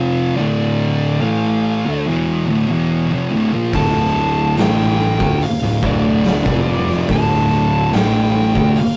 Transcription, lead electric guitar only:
0, 0, Header, 1, 2, 480
1, 0, Start_track
1, 0, Key_signature, -1, "minor"
1, 0, Tempo, 837989
1, 221, Time_signature, 4, 2, 24, 8
1, 5136, End_track
2, 0, Start_track
2, 0, Title_t, "Lead electric guitar"
2, 0, Program_c, 0, 29
2, 0, Note_on_c, 0, 77, 89
2, 208, Note_off_c, 0, 77, 0
2, 210, Note_on_c, 0, 74, 87
2, 693, Note_off_c, 0, 74, 0
2, 695, Note_on_c, 0, 77, 75
2, 1156, Note_off_c, 0, 77, 0
2, 2147, Note_on_c, 0, 81, 92
2, 2632, Note_off_c, 0, 81, 0
2, 2634, Note_on_c, 0, 79, 108
2, 3107, Note_on_c, 0, 77, 92
2, 3123, Note_off_c, 0, 79, 0
2, 3329, Note_off_c, 0, 77, 0
2, 3360, Note_on_c, 0, 74, 91
2, 4075, Note_on_c, 0, 81, 98
2, 4093, Note_off_c, 0, 74, 0
2, 4545, Note_off_c, 0, 81, 0
2, 4547, Note_on_c, 0, 79, 96
2, 5028, Note_on_c, 0, 77, 96
2, 5039, Note_off_c, 0, 79, 0
2, 5136, Note_off_c, 0, 77, 0
2, 5136, End_track
0, 0, End_of_file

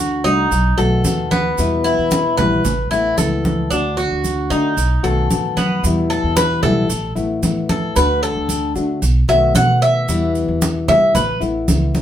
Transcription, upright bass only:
0, 0, Header, 1, 2, 480
1, 0, Start_track
1, 0, Key_signature, 1, "minor"
1, 0, Tempo, 531915
1, 1423, Time_signature, 4, 2, 24, 8
1, 10846, End_track
2, 0, Start_track
2, 0, Title_t, "Upright bass"
2, 0, Program_c, 0, 32
2, 0, Note_on_c, 0, 38, 86
2, 201, Note_off_c, 0, 38, 0
2, 217, Note_on_c, 0, 36, 91
2, 447, Note_off_c, 0, 36, 0
2, 462, Note_on_c, 0, 35, 107
2, 690, Note_off_c, 0, 35, 0
2, 705, Note_on_c, 0, 35, 97
2, 932, Note_off_c, 0, 35, 0
2, 947, Note_on_c, 0, 39, 84
2, 1402, Note_off_c, 0, 39, 0
2, 1428, Note_on_c, 0, 40, 106
2, 1769, Note_off_c, 0, 40, 0
2, 1788, Note_on_c, 0, 40, 81
2, 2129, Note_off_c, 0, 40, 0
2, 2147, Note_on_c, 0, 34, 90
2, 2375, Note_off_c, 0, 34, 0
2, 2386, Note_on_c, 0, 33, 106
2, 2615, Note_off_c, 0, 33, 0
2, 2626, Note_on_c, 0, 33, 89
2, 2855, Note_off_c, 0, 33, 0
2, 2864, Note_on_c, 0, 37, 92
2, 3322, Note_off_c, 0, 37, 0
2, 3344, Note_on_c, 0, 38, 108
2, 3688, Note_off_c, 0, 38, 0
2, 3708, Note_on_c, 0, 38, 80
2, 4050, Note_off_c, 0, 38, 0
2, 4065, Note_on_c, 0, 50, 94
2, 4294, Note_off_c, 0, 50, 0
2, 4303, Note_on_c, 0, 35, 102
2, 4533, Note_off_c, 0, 35, 0
2, 4545, Note_on_c, 0, 35, 84
2, 4774, Note_off_c, 0, 35, 0
2, 4785, Note_on_c, 0, 45, 82
2, 5002, Note_off_c, 0, 45, 0
2, 5028, Note_on_c, 0, 42, 81
2, 5243, Note_off_c, 0, 42, 0
2, 5267, Note_on_c, 0, 40, 120
2, 5609, Note_off_c, 0, 40, 0
2, 5626, Note_on_c, 0, 40, 79
2, 5968, Note_off_c, 0, 40, 0
2, 5981, Note_on_c, 0, 35, 101
2, 6211, Note_off_c, 0, 35, 0
2, 6221, Note_on_c, 0, 33, 117
2, 6451, Note_off_c, 0, 33, 0
2, 6460, Note_on_c, 0, 33, 91
2, 6690, Note_off_c, 0, 33, 0
2, 6700, Note_on_c, 0, 45, 87
2, 7158, Note_off_c, 0, 45, 0
2, 7182, Note_on_c, 0, 38, 115
2, 7524, Note_off_c, 0, 38, 0
2, 7540, Note_on_c, 0, 38, 84
2, 7883, Note_off_c, 0, 38, 0
2, 7900, Note_on_c, 0, 50, 92
2, 8129, Note_off_c, 0, 50, 0
2, 8140, Note_on_c, 0, 35, 117
2, 8369, Note_off_c, 0, 35, 0
2, 8380, Note_on_c, 0, 35, 91
2, 8609, Note_off_c, 0, 35, 0
2, 8621, Note_on_c, 0, 47, 99
2, 9077, Note_off_c, 0, 47, 0
2, 9101, Note_on_c, 0, 40, 117
2, 9442, Note_off_c, 0, 40, 0
2, 9459, Note_on_c, 0, 40, 86
2, 9801, Note_off_c, 0, 40, 0
2, 9818, Note_on_c, 0, 52, 96
2, 10047, Note_off_c, 0, 52, 0
2, 10060, Note_on_c, 0, 33, 111
2, 10288, Note_off_c, 0, 33, 0
2, 10299, Note_on_c, 0, 33, 94
2, 10527, Note_off_c, 0, 33, 0
2, 10540, Note_on_c, 0, 37, 99
2, 10846, Note_off_c, 0, 37, 0
2, 10846, End_track
0, 0, End_of_file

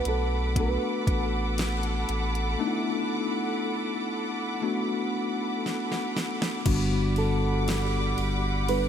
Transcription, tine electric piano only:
0, 0, Header, 1, 2, 480
1, 0, Start_track
1, 0, Tempo, 1016949
1, 1224, Time_signature, 4, 2, 24, 8
1, 4194, End_track
2, 0, Start_track
2, 0, Title_t, "Tine electric piano"
2, 0, Program_c, 0, 4
2, 0, Control_c, 0, 64, 127
2, 0, Note_on_c, 0, 57, 63
2, 0, Note_on_c, 0, 59, 61
2, 0, Note_on_c, 0, 62, 59
2, 0, Note_on_c, 0, 66, 73
2, 216, Note_off_c, 0, 57, 0
2, 217, Note_off_c, 0, 59, 0
2, 219, Note_off_c, 0, 62, 0
2, 220, Note_off_c, 0, 66, 0
2, 263, Note_on_c, 0, 57, 61
2, 266, Note_on_c, 0, 59, 58
2, 269, Note_on_c, 0, 62, 58
2, 270, Note_on_c, 0, 66, 69
2, 1176, Note_off_c, 0, 57, 0
2, 1177, Note_off_c, 0, 59, 0
2, 1179, Note_off_c, 0, 62, 0
2, 1179, Note_off_c, 0, 66, 0
2, 1223, Note_on_c, 0, 57, 78
2, 1227, Note_on_c, 0, 59, 74
2, 1227, Note_on_c, 0, 62, 76
2, 1230, Note_on_c, 0, 63, 72
2, 1258, Note_off_c, 0, 63, 0
2, 1259, Note_on_c, 0, 64, 90
2, 2136, Note_off_c, 0, 57, 0
2, 2138, Note_off_c, 0, 59, 0
2, 2138, Note_off_c, 0, 62, 0
2, 2154, Note_off_c, 0, 64, 0
2, 2180, Note_on_c, 0, 57, 76
2, 2183, Note_on_c, 0, 59, 70
2, 2185, Note_on_c, 0, 62, 66
2, 2186, Note_on_c, 0, 66, 82
2, 3094, Note_off_c, 0, 57, 0
2, 3096, Note_off_c, 0, 59, 0
2, 3097, Note_off_c, 0, 62, 0
2, 3097, Note_off_c, 0, 66, 0
2, 3140, Note_on_c, 0, 55, 77
2, 3143, Note_on_c, 0, 50, 67
2, 3144, Note_on_c, 0, 43, 70
2, 3144, Note_on_c, 0, 59, 76
2, 3145, Note_on_c, 0, 62, 74
2, 3146, Note_on_c, 0, 66, 89
2, 3151, Control_c, 0, 64, 0
2, 3228, Control_c, 0, 64, 127
2, 3845, Note_off_c, 0, 43, 0
2, 3845, Note_off_c, 0, 50, 0
2, 4054, Note_off_c, 0, 55, 0
2, 4056, Note_off_c, 0, 59, 0
2, 4057, Note_off_c, 0, 62, 0
2, 4057, Note_off_c, 0, 66, 0
2, 4104, Note_on_c, 0, 55, 65
2, 4106, Note_on_c, 0, 59, 61
2, 4109, Note_on_c, 0, 62, 62
2, 4109, Note_on_c, 0, 69, 70
2, 4194, Note_off_c, 0, 55, 0
2, 4194, Note_off_c, 0, 59, 0
2, 4194, Note_off_c, 0, 62, 0
2, 4194, Note_off_c, 0, 69, 0
2, 4194, End_track
0, 0, End_of_file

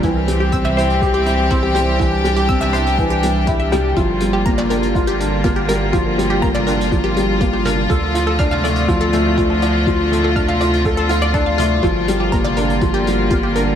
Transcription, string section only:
0, 0, Header, 1, 2, 480
1, 0, Start_track
1, 0, Tempo, 491803
1, 32, Time_signature, 4, 2, 24, 8
1, 13423, End_track
2, 0, Start_track
2, 0, Title_t, "String section"
2, 0, Program_c, 0, 48
2, 0, Note_on_c, 0, 55, 75
2, 31, Note_on_c, 0, 52, 79
2, 32, Note_on_c, 0, 67, 98
2, 33, Note_on_c, 0, 60, 75
2, 1933, Note_off_c, 0, 60, 0
2, 1956, Note_on_c, 0, 62, 74
2, 3833, Note_off_c, 0, 52, 0
2, 3834, Note_off_c, 0, 67, 0
2, 3855, Note_off_c, 0, 62, 0
2, 3876, Note_on_c, 0, 58, 70
2, 3876, Note_on_c, 0, 65, 93
2, 3878, Note_on_c, 0, 50, 81
2, 7673, Note_off_c, 0, 55, 0
2, 7676, Note_off_c, 0, 58, 0
2, 7677, Note_off_c, 0, 50, 0
2, 7714, Note_on_c, 0, 50, 79
2, 7714, Note_on_c, 0, 57, 81
2, 7715, Note_on_c, 0, 53, 78
2, 11514, Note_off_c, 0, 57, 0
2, 11515, Note_off_c, 0, 50, 0
2, 11515, Note_off_c, 0, 53, 0
2, 11556, Note_on_c, 0, 50, 82
2, 11556, Note_on_c, 0, 58, 75
2, 11557, Note_on_c, 0, 55, 74
2, 13423, Note_off_c, 0, 50, 0
2, 13423, Note_off_c, 0, 55, 0
2, 13423, Note_off_c, 0, 58, 0
2, 13423, Note_off_c, 0, 65, 0
2, 13423, End_track
0, 0, End_of_file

